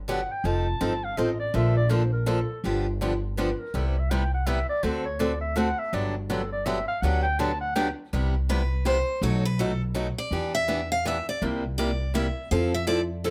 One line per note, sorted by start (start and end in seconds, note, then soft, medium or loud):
0.00 0.23 G1 medium
0.08 0.19 D3 medium
0.08 0.20 F#3 medium
0.08 0.20 B3 medium
0.08 0.20 D4 medium
0.08 0.20 G4 medium
0.08 0.33 F#5 medium
0.31 0.47 G5 medium
0.44 0.74 F1 medium
0.44 0.66 F3 medium
0.44 0.66 C4 medium
0.44 0.66 D#4 medium
0.44 0.66 A4 medium
0.44 1.06 A5 medium
0.81 1.12 G1 medium
0.81 0.92 F3 medium
0.81 0.92 C4 medium
0.81 0.92 D#4 medium
0.81 0.92 A4 medium
1.04 1.19 F5 medium
1.17 1.49 A1 medium
1.17 1.29 F3 medium
1.17 1.29 C4 medium
1.17 1.30 D#4 medium
1.17 1.29 A4 medium
1.17 1.39 D#5 medium
1.40 1.57 D5 medium
1.54 2.42 A#1 medium
1.54 1.75 D3 medium
1.54 1.75 F3 medium
1.54 1.75 A#3 medium
1.54 1.75 D4 medium
1.54 1.75 A4 medium
1.54 1.76 E5 medium
1.77 1.92 D5 medium
1.89 2.01 D3 medium
1.89 2.02 F3 medium
1.89 2.02 A#3 medium
1.89 2.02 D4 medium
1.89 2.02 A4 medium
1.89 2.12 C5 medium
2.13 2.29 A#4 medium
2.26 2.38 D3 medium
2.26 2.38 F3 medium
2.26 2.38 A#3 loud
2.26 2.38 D4 medium
2.26 2.64 A4 medium
2.26 2.39 A4 loud
2.64 3.52 G1 medium
2.64 2.85 D3 medium
2.64 2.86 F3 medium
2.64 2.86 B3 medium
2.64 2.86 D4 medium
2.64 2.86 G4 medium
3.01 3.12 D3 medium
3.01 3.12 F3 medium
3.01 3.12 B3 medium
3.01 3.13 D4 medium
3.01 3.13 G4 loud
3.37 3.48 D3 medium
3.37 3.49 F3 medium
3.37 3.49 B3 medium
3.37 3.49 D4 medium
3.37 3.49 G4 medium
3.37 3.61 B4 medium
3.60 3.76 A#4 medium
3.74 4.62 C2 medium
3.74 3.95 C3 medium
3.74 3.95 G3 medium
3.74 3.95 B3 medium
3.74 3.95 E4 medium
3.74 3.95 G4 medium
3.74 3.89 A4 medium
3.87 4.01 C5 medium
3.99 4.12 E5 medium
4.11 4.22 C3 medium
4.11 4.22 G3 medium
4.11 4.22 B3 medium
4.11 4.22 E4 medium
4.11 4.22 G4 medium
4.11 4.33 G5 medium
4.34 4.48 F#5 medium
4.46 4.58 C3 medium
4.46 4.58 G3 medium
4.46 4.58 B3 loud
4.46 4.58 E4 medium
4.46 4.59 G4 medium
4.46 4.69 E5 medium
4.69 4.85 D5 loud
4.83 5.71 D2 medium
4.83 5.04 D3 medium
4.83 5.04 A3 medium
4.83 5.05 C4 medium
4.83 5.04 F#4 medium
4.83 5.05 A4 medium
4.83 5.05 C5 medium
5.05 5.21 C#5 medium
5.19 5.31 D3 medium
5.19 5.31 A3 medium
5.19 5.31 C4 medium
5.19 5.31 F#4 medium
5.19 5.31 A4 medium
5.19 5.41 D5 medium
5.41 5.58 E5 medium
5.56 5.67 D3 medium
5.56 5.68 A3 medium
5.56 5.68 C4 medium
5.56 5.68 F#4 medium
5.56 5.68 A4 medium
5.56 5.81 F#5 loud
5.79 5.96 E5 medium
5.93 6.81 G1 medium
5.93 6.14 D3 medium
5.93 6.14 F#3 medium
5.93 6.14 B3 medium
5.93 6.14 D4 medium
5.93 6.14 G4 medium
5.93 6.16 D5 medium
6.17 6.32 F#4 medium
6.30 6.41 D3 medium
6.30 6.41 F#3 medium
6.30 6.41 B3 medium
6.30 6.41 D4 loud
6.30 6.41 G4 medium
6.30 6.52 A4 medium
6.53 6.67 D5 medium
6.66 6.77 D3 medium
6.66 6.77 F#3 medium
6.66 6.77 B3 loud
6.66 6.78 D4 medium
6.66 6.78 G4 loud
6.66 6.87 E5 medium
6.88 7.04 F5 loud
7.02 7.90 D2 medium
7.02 7.24 D3 medium
7.02 7.24 F#3 medium
7.02 7.24 B3 medium
7.02 7.24 D4 medium
7.02 7.25 G4 medium
7.02 7.22 F#5 medium
7.23 7.41 G5 loud
7.39 7.50 D3 medium
7.39 7.51 F#3 medium
7.39 7.51 B3 medium
7.39 7.51 D4 loud
7.39 7.51 G4 medium
7.39 7.60 A5 loud
7.61 7.75 F#5 loud
7.76 7.87 D3 medium
7.76 7.87 F#3 medium
7.76 7.87 B3 loud
7.76 7.87 D4 loud
7.76 7.88 G4 loud
7.76 7.89 G5 medium
8.13 9.01 C2 medium
8.13 8.34 C3 medium
8.13 8.34 G3 medium
8.13 8.34 B3 medium
8.13 8.34 E4 medium
8.13 8.34 G4 medium
8.49 8.60 C3 medium
8.49 8.61 G3 medium
8.49 8.61 B3 medium
8.49 8.61 E4 medium
8.49 8.60 G4 medium
8.49 8.84 B4 medium
8.85 8.97 C3 medium
8.85 8.97 G3 medium
8.85 8.97 B3 medium
8.85 8.97 E4 medium
8.85 8.97 G4 loud
8.85 9.20 C5 medium
9.22 10.10 B1 medium
9.22 9.43 B2 medium
9.22 9.43 F#3 medium
9.22 9.44 A3 medium
9.22 9.44 D#4 medium
9.22 9.44 F#4 medium
9.22 9.45 C#5 medium
9.45 9.59 B4 medium
9.59 9.70 B2 medium
9.59 9.70 F#3 medium
9.59 9.71 A3 medium
9.59 9.71 D#4 medium
9.59 9.71 F#4 medium
9.59 9.81 A4 medium
9.94 10.06 B2 medium
9.94 10.06 F#3 medium
9.94 10.06 A3 medium
9.94 10.06 D#4 medium
9.94 10.07 F#4 medium
10.18 10.52 D5 medium
10.31 11.19 E2 medium
10.31 10.53 E3 medium
10.31 10.53 B3 medium
10.31 10.53 D4 medium
10.31 10.53 G4 medium
10.55 10.89 E5 medium
10.68 10.79 E3 medium
10.68 10.80 B3 medium
10.68 10.80 D4 medium
10.68 10.80 G4 medium
10.92 11.05 F5 loud
11.05 11.16 E3 medium
11.05 11.17 B3 loud
11.05 11.17 D4 medium
11.05 11.17 G4 medium
11.05 11.28 E5 medium
11.29 11.42 D5 medium
11.42 12.30 C2 medium
11.42 11.63 C3 medium
11.42 11.63 G3 medium
11.42 11.63 A#3 medium
11.42 11.63 E4 medium
11.42 11.63 G4 medium
11.78 11.90 C3 medium
11.78 11.90 G3 medium
11.78 11.90 A#3 medium
11.78 11.90 E4 medium
11.78 11.90 G4 medium
11.78 12.12 D5 medium
12.14 12.26 C3 medium
12.14 12.26 G3 medium
12.14 12.26 A#3 medium
12.14 12.26 E4 loud
12.14 12.26 G4 medium
12.14 12.49 E5 medium
12.51 13.30 F2 medium
12.51 12.72 F3 medium
12.51 12.73 C4 medium
12.51 12.73 E4 medium
12.51 12.73 A4 medium
12.51 12.73 F5 medium
12.74 12.87 E5 medium
12.87 12.99 F3 medium
12.87 12.99 C4 medium
12.87 12.99 E4 medium
12.87 12.99 A4 medium
12.87 13.01 D5 medium
13.24 13.30 F3 medium
13.24 13.30 C4 medium
13.24 13.30 E4 medium
13.24 13.30 A4 medium
13.24 13.30 A4 loud